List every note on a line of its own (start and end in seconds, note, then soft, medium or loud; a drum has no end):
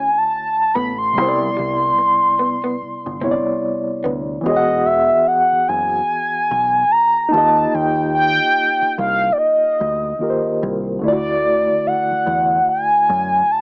0.00 0.69 D3 medium
0.00 0.70 A3 medium
0.00 0.71 E4 medium
0.00 0.72 F#4 medium
0.00 0.73 C#5 medium
0.00 0.19 G#5 loud
0.18 0.76 A5 loud
0.74 1.18 A1 medium
0.74 0.91 B3 medium
0.74 0.98 B5 loud
0.98 3.58 C6 loud
1.13 3.16 C3 medium
1.13 3.17 G3 medium
1.17 1.49 C2 loud
1.17 3.18 B3 medium
1.17 3.19 E4 medium
1.22 1.26 C5 medium
1.28 3.23 D5 medium
1.57 1.90 C2 loud
1.57 1.73 G3 medium
1.99 muted clean electric guitar stroke soft
2.39 2.55 B3 medium
2.64 2.74 B3 medium
2.82 muted fingered electric bass stroke soft
3.06 3.38 G1 medium
3.20 4.44 C3 medium
3.20 4.44 G3 medium
3.20 4.42 B3 medium
3.20 3.37 C4 medium
3.20 4.46 E4 medium
3.25 3.31 C#5 medium
3.31 4.49 D5 medium
4.04 4.36 D2 loud
4.04 4.20 B3 medium
4.41 7.26 E3 medium
4.41 7.27 B3 medium
4.41 4.87 D#5 loud
4.46 5.09 E1 loud
4.46 7.29 F#4 medium
4.46 7.30 G#4 medium
4.50 4.55 C#5 medium
4.56 7.34 F#5 medium
4.86 5.28 E5 medium
5.27 5.69 F#5 loud
5.53 muted fingered electric bass stroke soft
5.68 6.00 F#1 medium
5.68 6.93 G#5 loud
6.51 6.83 B1 loud
6.91 7.32 A#5 loud
7.29 10.15 A#3 medium
7.29 10.14 D#4 medium
7.29 7.75 A5 loud
7.33 7.65 D#2 loud
7.33 10.16 F4 medium
7.33 10.17 G4 medium
7.38 10.18 D#5 medium
7.74 8.38 D#2 loud
7.74 8.14 G5 loud
8.15 8.93 G5 loud
8.82 muted fingered electric bass stroke medium
8.98 9.30 C2 loud
8.98 9.34 F5 loud
9.32 9.39 D5 medium
9.38 10.61 D#5 medium
9.81 10.12 D2 loud
10.19 11.02 D#3 medium
10.19 11.02 A#3 soft
10.19 11.03 F4 soft
10.19 11.03 G4 soft
10.23 10.29 A#4 soft
10.30 11.07 C5 soft
10.63 11.04 C2 loud
10.99 13.61 D3 medium
10.99 13.61 A3 medium
11.04 11.67 D2 loud
11.04 13.61 E4 medium
11.04 11.12 F4 medium
11.04 11.88 D5 loud
11.08 13.61 D5 medium
11.13 13.61 F#4 medium
11.87 12.68 F#5 loud
12.11 muted fingered electric bass stroke medium
12.27 12.58 E2 loud
12.69 13.53 G#5 loud
13.10 13.41 F#2 loud
13.51 13.61 A5 loud